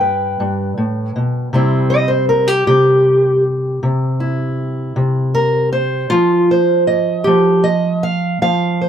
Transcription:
0.00 0.38 G2 medium
0.00 1.48 B4 soft
0.00 1.52 G5 loud
0.40 0.77 G2 medium
0.78 1.15 A2 medium
1.16 1.52 B2 medium
1.53 2.66 C3 medium
1.53 6.09 G3 soft
1.53 2.48 C4 soft
1.53 2.08 E4 medium
1.90 2.09 D#5 medium
2.08 2.28 C5 medium
2.29 2.48 A#4 medium
2.48 2.66 G4 medium
2.67 3.82 C3 medium
2.67 3.43 G4 medium
3.83 4.95 C3 medium
4.20 5.34 E4 soft
4.96 6.06 C3 medium
5.34 5.72 A#4 medium
5.73 6.11 C5 medium
6.10 7.26 F3 medium
6.10 6.49 F4 loud
6.51 6.87 C5 medium
6.87 7.26 D#5 medium
7.24 8.41 F3 medium
7.24 7.64 G4 medium
7.64 8.03 D#5 medium
8.03 8.41 F5 medium
8.42 8.89 F3 medium
8.42 8.89 F5 medium
8.81 8.89 C5 soft

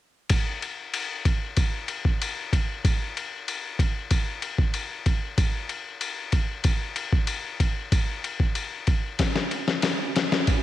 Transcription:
0.29 kick loud
0.29 ride medium
0.62 ride medium
0.94 ride medium
1.25 kick medium
1.25 ride medium
1.57 kick medium
1.57 ride medium
1.88 ride medium
2.05 kick medium
2.22 ride medium
2.53 kick medium
2.53 ride medium
2.85 kick loud
2.85 ride medium
3.17 ride medium
3.48 ride medium
3.79 kick medium
3.79 ride medium
4.11 kick medium
4.11 ride medium
4.42 ride medium
4.58 kick medium
4.74 ride medium
5.06 kick medium
5.06 ride soft
5.38 kick loud
5.38 ride medium
5.69 ride medium
6.01 ride medium
6.32 kick medium
6.32 ride medium
6.64 kick medium
6.64 ride medium
6.96 ride medium
7.13 kick medium
7.27 ride medium
7.60 kick medium
7.60 ride medium
7.92 kick loud
7.92 ride medium
8.24 ride medium
8.40 kick medium
8.55 ride medium
8.87 kick medium
8.87 ride soft
9.19 kick medium
9.19 snare medium
9.19 ride medium
9.36 snare soft
9.51 ride medium
9.68 snare soft
9.82 snare medium
9.82 ride medium
10.16 snare medium
10.16 ride medium
10.32 snare medium
10.47 kick loud
10.47 ride medium

